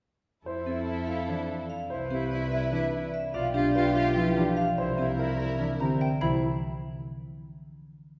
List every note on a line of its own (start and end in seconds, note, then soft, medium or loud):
0.45 1.78 F2 medium
0.45 1.65 E4 medium
0.45 0.60 E4 soft
0.45 1.65 A4 medium
0.45 0.73 C5 medium
0.66 0.93 C4 soft
0.66 0.81 E4 soft
0.66 0.94 A4 medium
0.87 1.02 E4 medium
0.87 1.14 E5 soft
1.07 1.22 E4 medium
1.07 1.34 F5 medium
1.27 1.55 E3 medium
1.27 1.55 D4 medium
1.27 1.43 E4 medium
1.27 1.55 C5 medium
1.49 1.63 E4 soft
1.70 1.96 F5 medium
1.90 3.22 C2 medium
1.90 3.09 E4 medium
1.90 2.05 E4 soft
1.90 3.09 B4 medium
1.90 2.17 C5 medium
2.11 2.37 C4 medium
2.11 2.26 E4 medium
2.11 2.37 G4 medium
2.31 2.46 E4 medium
2.31 2.58 D5 medium
2.52 2.66 E4 medium
2.52 2.79 E5 medium
2.72 2.99 E3 medium
2.72 2.99 D4 medium
2.72 2.86 E4 medium
2.72 2.99 B4 medium
2.94 3.08 E4 soft
3.14 3.40 E5 medium
3.33 4.66 B1 medium
3.33 4.53 F4 medium
3.33 3.49 F4 soft
3.33 4.53 G4 medium
3.33 3.61 D5 medium
3.33 3.61 F5 medium
3.54 3.81 D4 medium
3.54 3.69 F4 medium
3.54 3.81 G4 medium
3.75 3.89 F4 medium
3.75 4.02 B4 medium
3.75 4.02 E5 medium
3.95 4.10 F4 medium
3.95 4.22 F5 medium
4.15 4.43 F3 medium
4.15 4.43 E4 medium
4.15 4.30 F4 medium
4.15 4.43 B4 medium
4.36 4.64 E3 medium
4.36 4.64 D4 medium
4.36 4.51 F4 soft
4.36 4.63 G4 medium
4.36 4.63 G5 medium
4.57 4.84 F5 medium
4.77 6.10 C2 medium
4.77 5.96 E4 medium
4.77 4.92 E4 soft
4.77 5.97 A#4 medium
4.77 5.05 C5 medium
4.77 5.04 E5 medium
4.98 5.25 C4 medium
4.98 5.13 E4 medium
4.98 5.25 G4 medium
5.19 5.33 E4 medium
5.19 5.46 A#4 medium
5.19 5.46 D5 medium
5.39 5.54 E4 medium
5.39 5.66 E5 medium
5.59 5.86 E3 medium
5.59 5.87 D4 medium
5.59 5.74 E4 medium
5.59 5.87 A#4 medium
5.79 6.07 D3 medium
5.79 6.07 C4 medium
5.79 5.94 E4 soft
5.79 6.07 G4 medium
5.79 6.07 A#5 medium
6.01 6.28 E5 medium
6.01 6.28 G5 medium
6.21 6.41 C2 medium
6.21 6.41 E3 medium
6.21 6.41 E4 medium
6.21 6.40 C5 medium
6.21 6.41 B5 medium